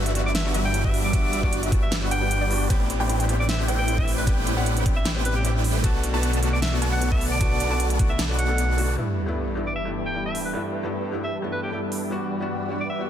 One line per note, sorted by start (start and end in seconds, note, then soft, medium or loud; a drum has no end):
0.00 2.68 G1 medium
0.00 2.67 E3 medium
0.00 0.12 G3 medium
0.00 5.80 G3 medium
0.00 0.13 B3 medium
0.00 0.13 D4 medium
0.00 5.80 D4 medium
0.00 2.67 E4 medium
0.00 0.13 F#4 loud
0.06 0.52 G3 medium
0.06 0.52 D4 medium
0.06 0.52 F#4 medium
0.06 0.52 B4 medium
0.06 0.52 E5 medium
0.06 0.52 E5 loud
0.06 closed hi-hat medium
0.14 0.24 G3 medium
0.14 0.25 B3 medium
0.14 0.25 D4 medium
0.14 0.25 F#4 loud
0.14 closed hi-hat medium
0.26 0.33 D5 medium
0.35 0.48 E5 loud
0.35 snare loud
0.35 closed hi-hat medium
0.35 ride soft
0.44 0.72 G3 medium
0.44 0.72 B3 medium
0.44 0.72 D4 medium
0.44 0.73 F#4 medium
0.54 1.11 G3 medium
0.54 1.11 D4 medium
0.54 1.11 F#4 medium
0.54 1.11 B4 medium
0.54 1.11 E5 loud
0.54 closed hi-hat medium
0.65 0.82 G5 loud
0.73 1.11 G3 medium
0.73 1.11 B3 medium
0.73 1.11 D4 medium
0.73 1.12 F#4 medium
0.73 closed hi-hat medium
0.84 0.97 E5 medium
0.84 kick medium
0.94 open hi-hat medium
1.04 1.41 D5 loud
1.12 1.40 G3 loud
1.12 1.41 G3 loud
1.12 1.41 B3 medium
1.12 1.41 D4 medium
1.12 1.41 F#4 medium
1.12 1.41 F#4 loud
1.12 1.41 B4 medium
1.12 1.41 E5 loud
1.12 kick loud
1.12 closed hi-hat medium
1.12 ride soft
1.33 closed hi-hat medium
1.42 1.69 G3 medium
1.42 1.60 G3 medium
1.42 1.70 B3 medium
1.42 1.60 D4 medium
1.42 1.70 D4 medium
1.42 1.60 F#4 medium
1.42 1.70 F#4 loud
1.42 1.60 B4 medium
1.42 1.60 D5 loud
1.42 1.56 D5 medium
1.42 1.60 D5 loud
1.42 kick medium
1.53 closed hi-hat medium
1.63 2.09 G3 medium
1.63 2.09 D4 medium
1.63 2.09 F#4 medium
1.63 2.09 B4 medium
1.63 2.09 E5 medium
1.63 2.10 E5 medium
1.63 closed hi-hat medium
1.71 1.81 G3 medium
1.71 1.82 B3 medium
1.71 1.82 D4 medium
1.71 1.82 F#4 loud
1.71 kick loud
1.71 closed hi-hat medium
1.82 1.95 E5 medium
1.92 snare loud
1.92 closed hi-hat medium
1.92 ride soft
2.01 2.19 G3 medium
2.01 2.19 B3 medium
2.01 2.20 D4 medium
2.01 2.20 F#4 medium
2.11 2.39 G3 medium
2.11 2.39 D4 medium
2.11 2.39 F#4 medium
2.11 2.39 B4 medium
2.11 2.39 F#5 medium
2.11 2.39 F#5 loud
2.11 2.66 G5 loud
2.11 closed hi-hat medium
2.21 2.30 G3 medium
2.21 2.30 B3 medium
2.21 2.31 D4 medium
2.21 2.31 G4 loud
2.31 closed hi-hat medium
2.41 2.68 G3 medium
2.41 2.68 D4 medium
2.41 2.68 F#4 medium
2.41 2.68 B4 medium
2.41 2.68 D5 loud
2.50 2.67 G3 medium
2.50 2.68 B3 medium
2.50 2.68 D4 medium
2.50 2.68 F#4 loud
2.50 open hi-hat medium
2.69 5.82 A1 medium
2.69 5.81 C3 medium
2.69 2.82 A3 loud
2.69 2.97 B3 medium
2.69 2.97 C4 medium
2.69 2.98 D4 medium
2.69 2.82 E4 medium
2.69 2.98 G4 loud
2.69 2.83 B4 medium
2.69 2.82 C5 medium
2.69 2.83 D5 medium
2.69 2.82 G5 loud
2.69 2.83 G5 loud
2.69 kick loud
2.69 closed hi-hat medium
2.69 ride soft
2.90 closed hi-hat medium
2.99 3.17 A3 medium
2.99 3.26 B3 medium
2.99 3.27 C4 medium
2.99 3.27 D4 medium
2.99 3.17 E4 medium
2.99 3.27 G4 loud
2.99 3.17 B4 medium
2.99 3.17 C5 medium
2.99 3.17 D5 medium
2.99 3.17 G5 loud
3.09 closed hi-hat medium
3.20 3.66 A3 medium
3.20 3.66 E4 medium
3.20 3.66 B4 medium
3.20 3.66 C5 medium
3.20 3.66 D5 medium
3.20 3.66 G5 medium
3.20 3.66 G5 loud
3.20 closed hi-hat medium
3.28 3.38 B3 medium
3.28 3.38 C4 medium
3.28 3.39 D4 medium
3.28 3.39 G4 medium
3.28 closed hi-hat medium
3.39 3.47 D5 medium
3.49 3.62 E5 medium
3.49 snare loud
3.49 closed hi-hat medium
3.49 ride soft
3.58 3.85 B3 medium
3.58 3.86 C4 medium
3.58 3.86 D4 medium
3.58 3.86 G4 loud
3.68 4.25 A3 medium
3.68 4.25 E4 medium
3.68 4.25 B4 medium
3.68 4.25 C5 medium
3.68 4.25 D5 medium
3.68 4.25 G5 loud
3.68 closed hi-hat medium
3.79 3.96 G5 medium
3.87 4.25 C4 medium
3.87 4.25 D4 medium
3.87 4.25 G4 medium
3.87 closed hi-hat medium
3.98 4.11 E5 loud
3.98 kick medium
4.08 open hi-hat medium
4.18 4.24 B4 medium
4.26 4.54 A3 loud
4.26 4.54 B3 medium
4.26 4.54 C4 medium
4.26 4.55 D4 medium
4.26 4.54 E4 medium
4.26 4.55 G4 loud
4.26 4.54 B4 medium
4.26 4.34 B4 medium
4.26 4.54 C5 medium
4.26 4.54 D5 medium
4.26 4.54 G5 loud
4.26 kick loud
4.26 closed hi-hat medium
4.26 ride medium
4.47 closed hi-hat medium
4.56 4.74 A3 loud
4.56 4.83 B3 medium
4.56 4.83 C4 medium
4.56 4.84 D4 medium
4.56 4.74 E4 medium
4.56 4.84 G4 loud
4.56 4.74 B4 medium
4.56 4.74 C5 medium
4.56 4.74 D5 medium
4.56 4.74 F#5 medium
4.56 4.74 F#5 loud
4.66 closed hi-hat medium
4.76 5.82 A3 medium
4.76 5.82 E4 medium
4.76 5.82 B4 medium
4.76 5.82 C5 medium
4.76 5.82 D5 medium
4.76 5.82 G5 medium
4.76 closed hi-hat medium
4.85 4.95 B3 medium
4.85 4.95 C4 medium
4.85 4.96 D4 medium
4.85 4.96 G4 loud
4.85 kick loud
4.85 closed hi-hat medium
4.96 5.09 E5 medium
5.05 snare loud
5.05 closed hi-hat medium
5.05 ride soft
5.15 5.42 B3 medium
5.15 5.43 C4 medium
5.15 5.43 D4 medium
5.15 5.43 G4 medium
5.25 5.33 B4 medium
5.25 closed hi-hat medium
5.35 5.41 G4 medium
5.44 5.81 C4 medium
5.44 5.82 D4 medium
5.44 5.51 G4 medium
5.44 5.82 G4 medium
5.44 closed hi-hat medium
5.64 open hi-hat medium
5.83 8.96 B1 medium
5.83 8.95 D3 medium
5.83 6.11 A3 loud
5.83 8.94 A3 medium
5.83 6.11 B3 medium
5.83 5.96 B3 loud
5.83 6.11 D4 medium
5.83 8.94 F#4 medium
5.83 6.12 F#4 loud
5.83 5.96 B4 medium
5.83 5.96 D5 medium
5.83 5.96 F#5 medium
5.83 5.96 A5 loud
5.83 kick loud
5.83 closed hi-hat medium
5.83 ride soft
6.04 closed hi-hat medium
6.13 6.40 A3 medium
6.13 6.40 B3 medium
6.13 6.31 B3 loud
6.13 6.41 D4 medium
6.13 6.41 F#4 loud
6.13 6.31 B4 medium
6.13 6.31 D5 medium
6.13 6.31 F#5 medium
6.13 6.31 A5 loud
6.23 closed hi-hat medium
6.33 6.80 B3 medium
6.33 6.80 B4 medium
6.33 6.80 D5 medium
6.33 6.80 F#5 medium
6.33 6.80 A5 medium
6.33 6.80 A5 loud
6.33 closed hi-hat medium
6.42 6.52 A3 medium
6.42 6.52 B3 medium
6.42 6.52 D4 medium
6.42 6.53 F#4 medium
6.42 closed hi-hat medium
6.53 6.60 D5 medium
6.62 6.75 E5 medium
6.62 snare loud
6.62 closed hi-hat medium
6.62 ride soft
6.71 6.99 A3 medium
6.71 6.99 B3 medium
6.71 7.00 D4 medium
6.71 7.00 F#4 medium
6.82 7.38 B3 loud
6.82 7.38 B4 medium
6.82 7.38 D5 medium
6.82 7.38 F#5 medium
6.82 7.38 A5 loud
6.82 closed hi-hat medium
6.92 7.10 F#5 loud
7.00 7.38 A3 medium
7.00 7.38 B3 medium
7.00 7.38 D4 medium
7.00 7.39 F#4 medium
7.00 closed hi-hat medium
7.12 7.24 E5 loud
7.12 kick medium
7.21 open hi-hat medium
7.31 7.69 D5 loud
7.40 7.68 A3 loud
7.40 7.68 B3 medium
7.40 7.68 B3 loud
7.40 7.68 D4 medium
7.40 7.69 F#4 loud
7.40 7.68 B4 loud
7.40 7.68 D5 medium
7.40 7.68 F#5 medium
7.40 7.68 A5 loud
7.40 kick loud
7.40 closed hi-hat medium
7.40 ride soft
7.60 closed hi-hat medium
7.69 7.97 A3 loud
7.69 7.97 B3 medium
7.69 7.88 B3 medium
7.69 7.97 D4 medium
7.69 7.98 F#4 loud
7.69 7.88 B4 medium
7.69 7.83 D5 medium
7.69 7.88 D5 medium
7.69 7.88 F#5 medium
7.69 7.88 A5 loud
7.80 closed hi-hat medium
7.90 8.95 B3 medium
7.90 8.95 B4 medium
7.90 8.95 D5 medium
7.90 8.95 F#5 medium
7.90 8.95 A5 medium
7.90 closed hi-hat medium
7.98 8.09 A3 medium
7.98 8.09 B3 medium
7.98 8.09 D4 medium
7.98 8.10 F#4 loud
7.98 kick loud
7.98 closed hi-hat medium
8.10 8.22 E5 medium
8.19 snare loud
8.19 closed hi-hat medium
8.19 ride soft
8.28 8.46 A3 medium
8.28 8.47 B3 medium
8.28 8.47 D4 medium
8.28 8.47 F#4 medium
8.39 8.94 F#5 loud
8.39 closed hi-hat medium
8.48 8.57 A3 medium
8.48 8.58 B3 medium
8.48 8.58 D4 medium
8.48 8.58 A4 loud
8.58 closed hi-hat medium
8.77 8.95 A3 medium
8.77 8.95 B3 medium
8.77 8.95 D4 medium
8.77 8.96 F#4 loud
8.77 open hi-hat medium
8.96 9.24 G2 medium
8.96 12.08 E3 medium
8.96 12.09 G3 medium
8.96 9.25 A3 medium
8.96 9.25 B3 medium
8.96 12.08 B3 medium
8.96 13.10 D4 medium
8.96 9.25 D4 medium
8.96 9.25 E4 loud
8.96 12.09 G4 medium
8.96 12.08 G4 medium
8.96 12.09 B4 medium
8.96 12.09 E5 medium
8.96 12.09 A5 medium
8.96 sub drop medium
9.26 9.54 G2 medium
9.26 9.54 A3 medium
9.26 9.54 B3 medium
9.26 9.54 D4 medium
9.26 9.55 E4 loud
9.55 9.66 G2 medium
9.55 9.66 A3 medium
9.55 9.66 B3 medium
9.55 9.66 D4 medium
9.55 9.67 E4 medium
9.67 9.74 D5 medium
9.76 9.89 E5 medium
9.85 10.13 G2 medium
9.85 10.13 A3 medium
9.85 10.13 B3 medium
9.85 10.14 D4 medium
9.85 10.14 E4 medium
10.06 10.23 G5 medium
10.14 10.52 G2 medium
10.14 10.52 A3 medium
10.14 10.52 B3 medium
10.14 10.53 D4 medium
10.14 10.53 E4 medium
10.26 10.38 E5 medium
10.35 open hi-hat medium
10.45 10.51 B4 medium
10.53 10.81 G2 medium
10.53 10.82 A3 medium
10.53 10.82 B3 medium
10.53 10.82 D4 medium
10.53 10.82 E4 loud
10.53 10.61 B4 medium
10.83 11.10 G2 medium
10.83 11.11 A3 medium
10.83 11.11 B3 medium
10.83 11.11 D4 medium
10.83 11.12 E4 medium
11.12 11.22 G2 medium
11.12 11.23 A3 medium
11.12 11.23 B3 medium
11.12 11.23 D4 medium
11.12 11.23 E4 medium
11.24 11.36 E5 medium
11.42 11.70 G2 medium
11.42 11.70 A3 medium
11.42 11.70 B3 medium
11.42 11.71 D4 medium
11.42 11.71 E4 medium
11.52 11.61 B4 medium
11.63 11.69 G4 medium
11.71 12.09 G2 medium
11.71 12.09 A3 medium
11.71 12.09 B3 medium
11.71 12.09 D4 medium
11.71 12.10 E4 medium
11.71 11.79 G4 medium
11.92 open hi-hat medium
12.10 13.10 G2 medium
12.10 13.10 E3 medium
12.10 12.38 G3 medium
12.10 13.10 G3 medium
12.10 12.39 B3 medium
12.10 12.39 D4 medium
12.10 12.39 F#4 loud
12.10 13.10 G4 medium
12.10 13.10 B4 medium
12.10 13.10 D5 medium
12.10 13.10 E5 medium
12.10 13.10 F#5 medium
12.40 12.67 G3 medium
12.40 12.68 B3 medium
12.40 12.68 D4 medium
12.40 12.68 F#4 medium
12.69 12.79 G3 medium
12.69 12.80 B3 medium
12.69 12.80 D4 medium
12.69 12.80 F#4 medium
12.80 12.88 D5 medium
12.89 13.03 E5 medium
12.99 13.10 G3 medium
12.99 13.10 B3 medium
12.99 13.10 D4 medium
12.99 13.10 F#4 medium